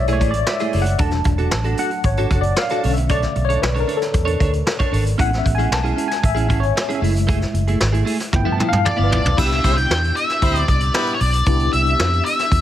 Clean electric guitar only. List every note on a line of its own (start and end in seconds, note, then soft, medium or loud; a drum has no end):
0.08 0.19 A3 medium
0.08 0.20 E4 medium
0.08 0.20 G#4 medium
0.20 0.31 A3 medium
0.20 0.32 E4 medium
0.20 0.32 G#4 medium
0.35 muted clean electric guitar stroke soft
0.47 muted clean electric guitar stroke soft
0.60 0.72 A3 medium
0.60 0.73 E4 medium
0.60 0.73 G#4 medium
0.73 0.84 A3 medium
0.73 0.84 E4 medium
0.73 0.85 G#4 medium
0.87 muted clean electric guitar stroke soft
0.99 1.13 D4 medium
0.99 1.13 F#4 medium
0.99 1.12 A4 medium
1.13 muted clean electric guitar stroke medium
1.26 muted clean electric guitar stroke soft
1.38 1.50 D4 medium
1.38 1.50 F#4 medium
1.38 1.49 A4 medium
1.54 muted clean electric guitar stroke soft
1.64 1.77 D4 medium
1.64 1.78 F#4 medium
1.64 1.78 A4 medium
1.78 1.89 D4 medium
1.78 1.89 F#4 medium
1.78 1.89 A4 medium
1.92 muted clean electric guitar stroke soft
2.04 muted clean electric guitar stroke soft
2.18 2.30 D4 medium
2.18 2.30 F#4 medium
2.18 2.31 A4 medium
2.31 2.42 D4 medium
2.31 2.42 F#4 medium
2.31 2.42 A4 medium
2.44 muted clean electric guitar stroke soft
2.57 muted clean electric guitar stroke soft
2.71 2.82 D4 medium
2.71 2.83 F#4 medium
2.71 2.83 A4 medium
2.83 2.94 D4 medium
2.83 2.94 A4 medium
2.83 2.95 C#5 medium
2.98 muted clean electric guitar stroke soft
3.10 3.23 D4 medium
3.10 3.22 A4 medium
3.10 3.21 C#5 medium
3.22 muted clean electric guitar stroke soft
3.36 muted clean electric guitar stroke soft
3.49 3.60 D4 medium
3.49 3.60 A4 medium
3.49 3.59 C#5 medium
3.62 muted clean electric guitar stroke soft
3.74 3.86 D4 medium
3.74 3.87 A4 medium
3.74 3.88 C#5 medium
3.88 3.98 D4 medium
3.88 3.99 A4 medium
3.88 3.99 C#5 medium
4.00 muted clean electric guitar stroke soft
4.13 muted clean electric guitar stroke soft
4.25 4.39 D4 medium
4.25 4.40 A4 medium
4.25 4.40 C#5 medium
4.40 4.51 D4 medium
4.40 4.51 A4 medium
4.40 4.51 C#5 medium
4.53 muted clean electric guitar stroke soft
4.66 muted clean electric guitar stroke soft
4.79 4.91 D4 medium
4.79 4.92 A4 medium
4.79 4.92 C#5 medium
4.92 5.03 D4 medium
4.92 5.03 A4 medium
4.92 5.04 C#5 medium
5.05 muted clean electric guitar stroke soft
5.18 5.32 C#4 medium
5.18 5.31 E4 medium
5.18 5.30 G#4 loud
5.31 muted clean electric guitar stroke medium
5.44 muted clean electric guitar stroke soft
5.58 5.69 C#4 medium
5.58 5.69 E4 medium
5.58 5.69 G#4 medium
5.71 muted clean electric guitar stroke soft
5.84 5.95 C#4 medium
5.84 5.96 E4 medium
5.84 5.97 G#4 medium
5.96 6.07 C#4 medium
5.96 6.08 E4 medium
5.96 6.08 G#4 medium
6.09 muted clean electric guitar stroke soft
6.23 muted clean electric guitar stroke soft
6.35 6.47 C#4 medium
6.35 6.48 E4 medium
6.35 6.49 G#4 medium
6.48 6.60 C#4 medium
6.48 6.60 E4 medium
6.48 6.60 G#4 medium
6.62 muted clean electric guitar stroke soft
6.76 muted clean electric guitar stroke soft
6.89 7.01 C#4 medium
6.89 7.01 E4 medium
6.89 7.01 G#4 medium
7.01 7.12 A3 medium
7.01 7.13 E4 medium
7.01 7.13 G#4 medium
7.14 muted clean electric guitar stroke soft
7.27 7.41 A3 medium
7.27 7.40 E4 loud
7.27 7.39 G#4 medium
7.40 muted clean electric guitar stroke soft
7.53 muted clean electric guitar stroke soft
7.68 7.79 A3 medium
7.68 7.79 E4 medium
7.68 7.78 G#4 medium
7.80 muted clean electric guitar stroke soft
7.93 8.04 A3 soft
7.93 8.05 E4 medium
7.93 8.05 G#4 medium
8.05 8.16 A3 medium
8.05 8.17 E4 medium
8.05 8.17 G#4 medium
8.20 muted clean electric guitar stroke soft
8.32 muted clean electric guitar stroke soft
8.45 8.57 F3 medium
8.45 8.58 B3 medium
8.45 8.58 E4 medium
8.58 8.69 F3 medium
8.58 8.70 B3 medium
8.58 8.70 E4 medium
8.85 muted clean electric guitar stroke soft
8.96 9.08 F3 medium
8.96 9.09 B3 medium
8.96 9.10 E4 medium
9.10 9.21 F3 medium
9.10 9.21 B3 medium
9.10 9.22 E4 medium
9.23 muted clean electric guitar stroke medium